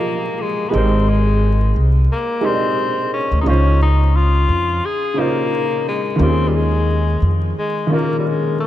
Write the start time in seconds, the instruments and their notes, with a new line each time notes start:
Already playing: felt piano F3 F4 G4 G#4 D#5, tenor saxophone A#3
0.41 tenor saxophone G#3
0.69 felt piano G#3 D#4, tenor saxophone B3
0.73 upright bass G#1, tenor saxophone C4, felt piano G4 A#4 C5
1.09 tenor saxophone G#3
1.76 upright bass C2
2.12 tenor saxophone A#3
2.41 felt piano G#3 D#4 G4
2.46 tenor saxophone C4, felt piano A#4 D5
2.54 felt piano D#5
3.13 tenor saxophone C#4
3.31 upright bass D2
3.41 felt piano C#3 C#4, tenor saxophone D#4
3.46 upright bass C#2, tenor saxophone C#4, felt piano D#4 F4 C5
3.82 tenor saxophone D#4
4.16 tenor saxophone F4
4.49 upright bass F2
4.85 tenor saxophone G#4
5.14 felt piano C#3 C#4 D#4
5.19 tenor saxophone A#3, felt piano F4 C5
5.88 tenor saxophone G#3
6.16 upright bass D#2, felt piano D#3 A#3 C#4
6.21 tenor saxophone C4, felt piano F4 G4
6.29 felt piano G#4
6.49 tenor saxophone G3
6.56 tenor saxophone G#3
7.22 upright bass F2
7.59 tenor saxophone G#3
7.87 felt piano D#3 A#3 C#4
7.92 tenor saxophone A#3, felt piano F4 A#4
8.19 tenor saxophone G3
8.27 tenor saxophone G#3
8.60 tenor saxophone A#3